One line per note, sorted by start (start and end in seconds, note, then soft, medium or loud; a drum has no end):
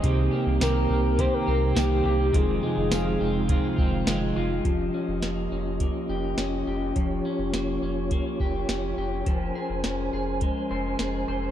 0.00 0.29 C2 loud
0.00 4.61 C3 medium
0.00 0.32 C3 medium
0.00 2.34 C3 medium
0.00 2.32 A#3 medium
0.00 0.35 C4 medium
0.00 2.32 D#4 medium
0.00 2.32 G4 medium
0.00 kick loud
0.00 closed hi-hat medium
0.04 0.33 D#3 medium
0.04 0.33 A#3 medium
0.04 0.32 C4 medium
0.04 0.30 G4 medium
0.31 1.76 A#3 medium
0.31 0.62 C4 medium
0.31 0.61 G4 medium
0.36 0.61 A#3 soft
0.47 0.59 C2 loud
0.60 0.87 C2 loud
0.60 0.90 C3 medium
0.60 0.90 D#3 loud
0.60 0.90 A#3 medium
0.60 0.90 C4 loud
0.60 1.17 G4 medium
0.60 0.87 G4 medium
0.60 1.21 A#4 loud
0.60 snare loud
0.60 closed hi-hat medium
0.60 tambourine medium
0.89 1.28 C2 medium
0.89 1.47 C4 medium
0.89 1.19 C4 medium
0.89 1.18 G4 medium
0.93 1.17 A#3 medium
1.17 1.47 D#3 medium
1.17 1.48 A#3 medium
1.17 1.47 C4 medium
1.17 2.04 G4 medium
1.17 1.36 C5 loud
1.17 kick medium
1.17 closed hi-hat medium
1.22 1.45 G4 medium
1.34 1.77 A#4 loud
1.46 1.73 C2 loud
1.46 3.21 C4 medium
1.46 1.77 C4 soft
1.46 1.76 G4 medium
1.51 1.76 A#3 soft
1.75 2.02 C2 loud
1.75 2.05 C3 medium
1.75 2.05 D#3 loud
1.75 2.40 A#3 medium
1.75 2.06 A#3 medium
1.75 2.05 C4 medium
1.75 2.37 G4 medium
1.75 2.02 G4 medium
1.75 snare loud
1.75 closed hi-hat medium
1.75 tambourine medium
2.03 2.31 C2 loud
2.03 2.34 C4 soft
2.03 2.33 G4 medium
2.03 2.40 G4 medium
2.08 2.34 A#3 medium
2.33 2.60 F1 medium
2.33 2.62 F2 medium
2.33 4.65 F2 medium
2.33 2.63 C3 medium
2.33 2.63 D#3 medium
2.33 4.63 G#3 medium
2.33 2.63 G#3 medium
2.33 2.62 C4 medium
2.33 4.63 D#4 medium
2.33 4.63 F4 medium
2.33 2.60 F4 medium
2.33 4.08 G#4 loud
2.33 kick loud
2.33 closed hi-hat medium
2.61 4.06 G#3 medium
2.61 2.91 G#3 medium
2.61 2.92 C4 soft
2.61 2.91 F4 medium
2.66 2.90 D#3 soft
2.77 2.90 F1 loud
2.90 3.17 F1 medium
2.90 3.20 F2 medium
2.90 3.20 C3 medium
2.90 3.21 D#3 medium
2.90 3.20 G#3 medium
2.90 3.19 C4 medium
2.90 3.49 F4 medium
2.90 3.18 F4 loud
2.90 snare loud
2.90 closed hi-hat medium
2.90 tambourine medium
3.19 3.59 F1 medium
3.19 3.48 G#3 medium
3.19 3.49 C4 medium
3.19 3.77 C4 medium
3.19 3.49 F4 medium
3.23 3.47 D#3 medium
3.48 3.77 D#3 medium
3.48 3.78 G#3 medium
3.48 3.77 C4 medium
3.48 4.36 F4 medium
3.48 kick loud
3.48 closed hi-hat medium
3.52 3.75 F4 medium
3.77 4.04 F1 medium
3.77 4.06 G#3 medium
3.77 4.07 C4 medium
3.77 4.71 C4 medium
3.77 4.06 F4 medium
3.77 kick loud
3.81 4.06 D#3 medium
4.06 4.33 F1 loud
4.06 4.35 F2 medium
4.06 4.36 C3 medium
4.06 4.36 D#3 loud
4.06 4.71 G#3 medium
4.06 4.36 G#3 loud
4.06 4.35 C4 loud
4.06 4.33 F4 loud
4.06 snare loud
4.06 closed hi-hat medium
4.06 tambourine medium
4.34 4.61 F1 loud
4.34 4.66 G#3 medium
4.34 4.65 C4 medium
4.34 4.64 F4 medium
4.34 6.12 F4 medium
4.39 4.66 D#3 soft
4.65 4.90 F1 medium
4.65 6.96 F3 medium
4.65 9.22 C#4 medium
4.65 9.22 F4 medium
4.65 9.22 G4 medium
4.65 6.93 D#5 medium
4.65 kick medium
4.65 closed hi-hat medium
4.94 5.52 C#4 soft
5.08 5.21 F1 loud
5.23 5.48 F1 medium
5.23 5.80 A#3 medium
5.23 snare medium
5.23 closed hi-hat medium
5.52 5.90 F1 medium
5.52 6.38 C#4 soft
5.80 7.54 A#3 medium
5.80 kick medium
5.80 closed hi-hat medium
6.09 6.35 F1 medium
6.09 6.66 G4 medium
6.38 6.63 F1 medium
6.38 7.25 C#4 medium
6.38 snare loud
6.38 closed hi-hat medium
6.67 6.92 F1 medium
6.67 8.39 G4 medium
6.96 7.21 F1 medium
6.96 9.26 F3 medium
6.96 9.24 C#5 medium
6.96 kick medium
6.96 closed hi-hat medium
7.25 7.82 C#4 medium
7.39 7.52 F1 loud
7.53 7.79 F1 medium
7.53 8.11 A#3 medium
7.53 snare loud
7.53 closed hi-hat medium
7.82 8.20 F1 medium
7.82 8.69 C#4 soft
8.11 9.58 A#3 medium
8.11 kick medium
8.11 closed hi-hat medium
8.40 8.65 F1 loud
8.40 8.97 G4 medium
8.40 kick medium
8.69 8.94 F1 loud
8.69 9.84 C#4 medium
8.69 snare medium
8.69 closed hi-hat medium
8.98 9.23 F1 loud
8.98 9.32 G4 medium
9.26 9.52 F1 medium
9.26 11.51 F3 medium
9.26 11.51 C#4 medium
9.26 11.51 A#4 medium
9.26 11.51 C5 medium
9.26 11.51 G#5 medium
9.26 kick medium
9.26 closed hi-hat medium
9.55 10.12 G#4 medium
9.70 9.82 F1 medium
9.84 10.10 F1 medium
9.84 11.51 C#4 medium
9.84 snare loud
9.84 closed hi-hat medium
10.13 10.51 F1 medium
10.13 10.98 G#4 medium
10.41 11.51 G#3 medium
10.41 kick medium
10.41 closed hi-hat medium
10.71 10.96 F1 medium
10.71 11.27 C5 medium
10.99 11.25 F1 medium
10.99 11.51 G#4 medium
10.99 snare loud
10.99 closed hi-hat medium
11.28 11.51 F1 medium
11.28 11.51 C5 medium